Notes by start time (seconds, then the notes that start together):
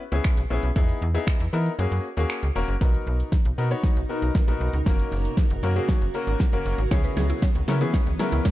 0.12 C#2 B3 C#4 E4 G#4, closed hi-hat
0.24 finger snap, kick, closed hi-hat
0.37 B1, closed hi-hat
0.50 A#1 B3 C#4 E4 G#4
0.63 B1, closed hi-hat
0.76 E2 B3 D#4 E4 G#4, kick, closed hi-hat
0.89 closed hi-hat
1.02 E2
1.14 B3 D#4 E4 G#4, closed hi-hat
1.27 finger snap, kick, closed hi-hat
1.40 E2, closed hi-hat
1.53 E3 B3 D#4 E4 A#4
1.66 closed hi-hat
1.79 F#2 A#3 C#4 F#4 G#4, closed hi-hat
1.92 F#2, closed hi-hat
2.17 D#2 A#3 C#4 F#4 G#4, closed hi-hat
2.30 finger snap, closed hi-hat
2.43 C#2, closed hi-hat
2.55 E1 A#3 C#4 F#4 A#4
2.68 F#1, closed hi-hat
2.81 B1 B2 B3 D#4 F#4 A#4, kick, snare, closed hi-hat
2.94 closed hi-hat
3.07 B1
3.20 closed hi-hat
3.32 kick, snare, closed hi-hat
3.45 B1, closed hi-hat
3.58 B2 B3 D#4 F#4 A#4
3.71 B3 D#4 F#4 C#5, closed hi-hat
3.84 kick, snare, closed hi-hat
3.97 B1, closed hi-hat
4.09 B3 D#4 F#4 A#4
4.22 B1, closed hi-hat
4.35 kick, snare, closed hi-hat
4.48 A#1 B3 D#4 F#4 A#4, closed hi-hat
4.61 B1
4.73 C#2, closed hi-hat
4.86 F#1 C#3 A#3 C#4 F#4 A#4, kick, snare, closed hi-hat, shaker
4.99 closed hi-hat, shaker
5.12 F#1, open hi-hat, shaker
5.25 closed hi-hat, shaker
5.37 kick, snare, closed hi-hat, shaker
5.50 F#1, closed hi-hat, shaker
5.63 F#2 A#3 C#4 F#4 A#4, open hi-hat, shaker
5.76 A#3 C#4 F#4 G#4, closed hi-hat, shaker
5.89 kick, snare, closed hi-hat, shaker
6.01 F#1, closed hi-hat, shaker
6.14 A#3 C#4 F#4 A#4, open hi-hat, shaker
6.27 G#1, closed hi-hat, shaker
6.40 kick, snare, closed hi-hat, shaker
6.53 F#1 A#3 C#4 F#4 A#4, closed hi-hat, shaker
6.66 F#1, open hi-hat, shaker
6.78 G#1, closed hi-hat, shaker
6.91 C#2 C#3 E3 B3 C#4 E4 G#4 C#5, kick, snare, closed hi-hat, shaker
7.04 B4, closed hi-hat, shaker
7.17 C#2 G#4, snare, open hi-hat, shaker
7.30 E4, closed hi-hat, shaker
7.42 C#4, kick, snare, closed hi-hat, shaker
7.55 C#2, closed hi-hat, shaker
7.68 C#3 B3 C#4 E4 A#4, snare, open hi-hat, shaker
7.81 E3 B3 C#4 E4 G#4, closed hi-hat, shaker
7.94 C#5, kick, snare, closed hi-hat, shaker
8.07 C#2, closed hi-hat, shaker
8.19 B3 C#4 E4 G#4 A#4, snare, open hi-hat, shaker
8.32 C#2 E4, closed hi-hat, shaker
8.45 C#4, kick, snare, closed hi-hat, shaker